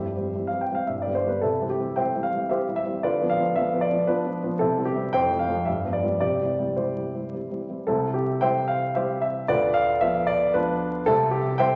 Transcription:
Already playing: G4 C5 E5
0.00 E3 G3 C4
0.16 E3 G3 C4
0.35 E3 G3 C4
0.47 F5
0.53 E3 G3 C4
0.61 G5
0.71 E3 G3 C4 F5
0.87 G2 E5
1.02 D5
1.07 D3 G3 B3
1.15 C5
1.25 D3 G3 B3 B4
1.41 C3 C4 E4 A4
1.61 E3 G3 C4
1.70 G4
1.79 E3 G3 C4
1.96 E3 G3 C4 C5 E5 G5
2.15 E3 G3 C4
2.23 F5
2.33 E3 G3 C4
2.50 E3 G3 C4 G4 C5 E5
2.69 E3 G3 C4
2.76 E5
2.86 E3 G3 C4
3.03 D3 F4 B4 D5
3.21 F3 B3
3.29 F5
3.39 F3 B3
3.55 F3 B3 E5
3.74 F3 B3
3.81 D5
3.91 F3 B3
4.07 F3 B3 D4 F4 B4
4.25 F3 B3
4.44 F3 B3
4.59 C3 C4 E4 A4
4.77 E3 G3 C4
4.85 G4
4.96 E3 G3 C4
5.13 F2 C5 G5
5.30 F3 A3 C4
5.39 F5
5.49 F3 A3 C4
5.65 G2 E5
5.84 F3 G3 B3
5.93 D5
6.04 F3 G3 B3
6.21 C3 G4 D5
6.41 E3 G3 C4
6.59 E3 G3 C4
6.76 E3 G3 C4 E4 G4 C5
6.96 E3 G3 C4
7.14 E3 G3 C4
7.33 E3 G3 C4
7.51 E3 G3 C4
7.69 E3 G3 C4
7.87 C2 C3 C4 E4 A4
8.14 G4
8.41 E3 G3 C4 C5 E5 G5
8.68 F5
8.95 E3 G3 C4 G4 C5 E5
9.22 E5
9.48 D2 D3 F4 B4 D5
9.74 F5
10.01 F3 B3 E5
10.27 D5
10.54 F3 B3 D4 F4 B4
11.06 C2 C3 C4 E4 A4
11.31 G4
11.58 E3 G3 C4 C5 E5 G5

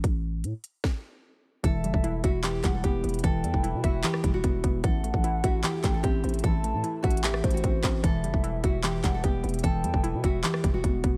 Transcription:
0.04 A1, kick, closed hi-hat
0.44 A2, closed hi-hat
0.64 closed hi-hat
0.84 kick, snare
1.63 E1 E3 G3 B3 E4 A4 E5, kick, closed hi-hat
1.84 F#1 G3, closed hi-hat
1.94 E1, kick
2.04 E4, closed hi-hat
2.24 E1 F#4 E5, kick, closed hi-hat
2.44 E3 G4, clap, closed hi-hat
2.64 E1 G3 F#5, kick, clap, closed hi-hat
2.74 A4
2.84 E1 B3 G4, kick, closed hi-hat
3.03 E1 B3, closed hi-hat, open hi-hat
3.09 closed hi-hat
3.14 closed hi-hat
3.19 closed hi-hat
3.23 E1 E3 A4 G5, kick, closed hi-hat
3.44 E2 G3, closed hi-hat
3.54 E1, kick
3.63 E4, closed hi-hat
3.74 B2
3.84 E1 F#4 E5, kick, closed hi-hat
4.04 E3 G4, clap, closed hi-hat
4.14 cross-stick
4.24 E1 G3, kick, closed hi-hat
4.34 F#4
4.44 E1 B3, kick, closed hi-hat
4.64 E1 B3, kick, closed hi-hat
4.83 A1 C3 E3 A3 E4 A4 F#5, kick, closed hi-hat
5.03 A3, closed hi-hat
5.14 A1, kick
5.24 E4, closed hi-hat
5.44 A1 F#4 E5, kick, closed hi-hat
5.64 E3 G4, clap, closed hi-hat
5.84 A1 A3 G5, kick, clap, closed hi-hat
5.94 A4
6.03 A1 C4 G4, kick, closed hi-hat
6.24 A1 C4, closed hi-hat, open hi-hat
6.29 closed hi-hat
6.34 closed hi-hat
6.39 closed hi-hat
6.44 A1 E3 A4 A5, kick, closed hi-hat
6.64 A3, closed hi-hat
6.74 A2
6.84 E4, closed hi-hat
7.03 A1 F#4 E5 F#5, kick, closed hi-hat
7.11 closed hi-hat
7.17 closed hi-hat
7.24 E3 G4 E5, clap, closed hi-hat
7.34 cross-stick
7.44 A1 A3 C5, kick, closed hi-hat
7.51 F#4, closed hi-hat
7.57 closed hi-hat
7.64 A1 C4, kick, closed hi-hat
7.84 A1 C4, kick, clap, closed hi-hat
8.03 E1 E3 G3 B3 E4 A4 E5, kick, closed hi-hat
8.24 F#1 G3, closed hi-hat
8.34 E1, kick
8.44 E4, closed hi-hat
8.64 E1 F#4 E5, kick, closed hi-hat
8.84 E3 G4, clap, closed hi-hat
9.04 E1 G3 F#5, kick, clap, closed hi-hat
9.14 A4
9.24 E1 B3 G4, kick, closed hi-hat
9.43 E1 B3, closed hi-hat, open hi-hat
9.49 closed hi-hat
9.54 closed hi-hat
9.59 closed hi-hat
9.63 E1 E3 A4 G5, kick, closed hi-hat
9.84 E2 G3, closed hi-hat
9.94 E1, kick
10.03 E4, closed hi-hat
10.14 B2
10.24 E1 F#4 E5, kick, closed hi-hat
10.44 E3 G4, clap, closed hi-hat
10.54 cross-stick
10.63 E1 G3, kick, closed hi-hat
10.74 F#4
10.84 E1 B3, kick, closed hi-hat
11.04 E1 B3, kick, closed hi-hat

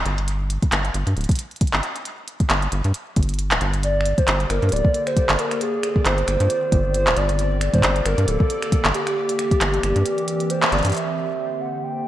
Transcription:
0.06 G1, closed hi-hat
0.18 closed hi-hat
0.28 closed hi-hat
0.50 closed hi-hat
0.62 kick, closed hi-hat
0.72 G1, clap, closed hi-hat
0.85 closed hi-hat
0.94 G1, closed hi-hat
1.07 G2, closed hi-hat
1.17 D1, closed hi-hat
1.21 closed hi-hat
1.24 closed hi-hat
1.29 kick, closed hi-hat
1.31 closed hi-hat
1.36 closed hi-hat
1.39 closed hi-hat
1.51 closed hi-hat
1.56 closed hi-hat
1.61 kick, closed hi-hat
1.67 closed hi-hat
1.73 G1, clap
1.83 closed hi-hat
1.96 closed hi-hat
2.05 closed hi-hat
2.28 closed hi-hat
2.40 kick, closed hi-hat
2.50 G1, clap, closed hi-hat
2.62 closed hi-hat
2.72 G1, closed hi-hat
2.84 G2, closed hi-hat
2.94 closed hi-hat
3.16 G1, kick, closed hi-hat
3.23 closed hi-hat
3.29 closed hi-hat
3.34 closed hi-hat
3.39 closed hi-hat
3.51 D1, clap, closed hi-hat
3.61 G1, closed hi-hat
3.74 closed hi-hat
3.83 D3 D5, closed hi-hat
4.00 A#3 G4, finger snap
4.06 closed hi-hat
4.18 C5, kick, closed hi-hat
4.28 G1, finger snap, clap, closed hi-hat
4.40 closed hi-hat
4.50 G1 A#4, finger snap, closed hi-hat
4.62 G2 A4, closed hi-hat
4.69 closed hi-hat
4.72 D1 D5, closed hi-hat
4.76 closed hi-hat
4.85 kick
4.94 closed hi-hat
5.07 C5, finger snap, closed hi-hat
5.17 kick, closed hi-hat
5.29 G1, clap, closed hi-hat
5.39 A#4, closed hi-hat
5.51 finger snap, closed hi-hat
5.61 D#3 G#4, closed hi-hat
5.81 C4, finger snap, closed hi-hat
5.96 F4, kick
6.01 G#4
6.06 G1 C5, clap, closed hi-hat
6.18 closed hi-hat
6.28 G1, finger snap, closed hi-hat
6.40 G2, closed hi-hat
6.50 closed hi-hat
6.72 G1, kick, closed hi-hat
6.94 C5, closed hi-hat
7.07 D1, clap, closed hi-hat
7.17 G1 D5, closed hi-hat
7.29 closed hi-hat
7.39 D3, closed hi-hat
7.51 A#3
7.61 finger snap, closed hi-hat
7.71 A4 C5, kick, closed hi-hat
7.76 kick
7.78 G4, kick
7.81 G1, finger snap, kick, clap, closed hi-hat
7.96 closed hi-hat
8.05 G1 A#4, finger snap, closed hi-hat
8.18 G2, closed hi-hat
8.28 D1 A4, closed hi-hat
8.40 kick
8.50 closed hi-hat
8.62 finger snap, closed hi-hat
8.72 kick, closed hi-hat
8.85 G1, clap, closed hi-hat
8.94 G4, closed hi-hat
9.07 finger snap, closed hi-hat
9.17 E3
9.29 closed hi-hat
9.39 finger snap, closed hi-hat
9.51 C4, kick, closed hi-hat
9.56 A#4
9.61 G1, clap, closed hi-hat
9.74 closed hi-hat
9.83 G1, finger snap, closed hi-hat
9.96 G2, closed hi-hat
10.06 closed hi-hat
10.18 closed hi-hat
10.28 closed hi-hat
10.40 closed hi-hat
10.50 C5, closed hi-hat
10.62 clap, closed hi-hat
10.72 G1 D5, closed hi-hat
10.79 closed hi-hat
10.83 G2, closed hi-hat
10.85 closed hi-hat
10.86 closed hi-hat
10.90 closed hi-hat
10.92 D3 C5 E5, closed hi-hat
10.95 closed hi-hat
10.97 closed hi-hat
11.25 A#3
11.61 F#5
11.75 A4
11.83 G5

